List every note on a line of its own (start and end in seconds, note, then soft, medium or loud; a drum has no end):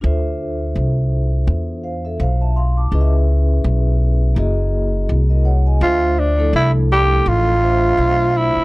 0.01 0.72 D2 medium
0.01 2.87 D4 medium
0.01 2.88 F4 medium
0.01 1.80 A4 medium
0.01 1.80 C5 medium
0.01 1.81 E5 medium
0.76 1.44 C2 medium
1.47 2.16 E2 medium
1.84 2.04 C5 soft
1.84 2.03 F5 medium
2.05 2.20 A4 medium
2.05 2.19 E5 medium
2.20 2.88 B1 medium
2.20 2.40 C5 soft
2.20 2.40 F5 medium
2.41 2.56 E5 medium
2.41 2.56 A5 medium
2.56 2.76 F5 medium
2.56 2.76 C6 medium
2.77 3.12 A5 soft
2.77 3.11 D6 medium
2.91 3.61 C#2 medium
2.91 4.33 C#4 medium
2.91 4.34 E4 medium
2.91 4.34 G#4 medium
2.91 4.35 B4 medium
2.91 3.01 D#5 medium
3.01 4.38 E5 medium
3.64 4.33 B1 medium
4.35 5.05 F#1 medium
4.35 5.78 A#3 medium
4.35 5.78 E4 medium
4.35 5.78 F#4 medium
4.35 5.79 G#4 medium
4.35 5.09 D#5 medium
5.09 5.78 C2 medium
5.30 5.45 A#4 soft
5.30 5.45 D#5 medium
5.45 5.65 C#5 medium
5.45 5.65 F#5 medium
5.66 6.01 D#5 medium
5.66 6.01 G#5 medium
5.81 6.50 D2 loud
5.81 6.31 A3 medium
5.81 6.31 D4 medium
5.81 6.31 F4 medium
5.81 6.21 F4 medium
5.81 6.31 C5 medium
5.81 6.31 E5 medium
6.19 6.54 D4 medium
6.38 7.50 F3 medium
6.38 7.49 A3 medium
6.38 7.50 D4 medium
6.38 7.50 E4 medium
6.38 7.50 A4 medium
6.53 7.22 C2 medium
6.53 6.72 E4 medium
6.92 7.30 G4 loud
7.26 7.95 A1 medium
7.26 8.39 F4 loud
7.61 8.59 A3 medium
7.61 8.60 D4 medium
7.61 8.60 F4 medium
7.61 8.60 C5 medium
7.61 8.60 E5 medium
7.98 8.52 B1 medium
8.37 8.64 E4 medium
8.56 muted upright bass stroke soft